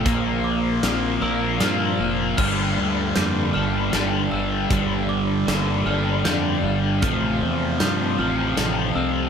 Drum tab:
CC |------|x-----|------|------|
HH |x-x-x-|--x-x-|x-x-x-|x-x-x-|
SD |--o-o-|--o-o-|--o-o-|--o-o-|
BD |o-----|o-----|o-----|o-----|